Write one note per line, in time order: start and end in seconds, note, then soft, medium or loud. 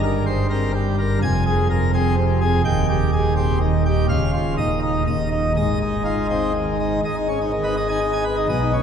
0.00 1.18 G1 medium
0.00 1.18 G2 medium
0.00 0.24 A#4 medium
0.26 0.46 C5 medium
0.50 0.71 C4 medium
0.50 0.71 A#4 medium
0.75 0.96 G3 medium
0.99 1.19 A#4 medium
1.22 2.61 F1 medium
1.22 2.61 F2 medium
1.22 1.43 G#5 loud
1.47 1.67 G#4 medium
1.70 1.90 A#4 medium
1.94 2.15 C4 medium
1.94 2.15 G#4 medium
2.18 2.39 C3 medium
2.41 2.61 G#4 medium
2.65 4.05 D#1 medium
2.65 4.05 D#2 medium
2.65 2.86 G5 loud
2.89 3.10 G4 medium
3.13 3.33 G#4 medium
3.37 3.58 C4 medium
3.37 3.58 G4 medium
3.62 3.83 D#3 medium
3.86 4.06 G4 medium
4.09 4.56 C#1 medium
4.09 4.56 C#2 medium
4.09 4.30 F5 loud
4.33 4.54 F4 medium
4.58 5.05 D#1 medium
4.58 5.04 D#2 medium
4.58 4.79 D#5 medium
4.82 5.03 D#4 medium
5.06 5.54 D#1 medium
5.06 5.54 D#2 medium
5.06 5.29 D#5 medium
5.32 5.52 D#4 medium
5.57 7.00 G#1 medium
5.57 7.00 G#2 medium
5.57 5.78 D#5 medium
5.82 6.03 D#4 medium
6.05 6.27 D#4 medium
6.05 6.26 F4 soft
6.30 6.52 C4 soft
6.30 6.52 D#4 medium
6.55 6.77 D#3 medium
6.80 7.00 D#4 medium
7.05 8.46 G#1 medium
7.05 8.46 G#2 medium
7.05 7.15 D#5 medium
7.17 7.27 D#4 medium
7.29 7.39 C#4 medium
7.41 7.52 D#4 medium
7.53 7.63 D#3 medium
7.64 7.75 D#4 medium
7.64 7.75 B4 medium
7.77 7.87 D#5 medium
7.89 7.99 D#4 medium
7.89 8.00 G#5 medium
8.01 8.11 D#5 medium
8.13 8.24 D#4 medium
8.13 8.24 G#5 medium
8.25 8.35 B4 medium
8.37 8.47 D#4 medium
8.49 8.83 B1 medium
8.49 8.83 B2 medium
8.49 8.60 D#5 medium
8.61 8.72 D#4 medium
8.73 8.83 C#4 medium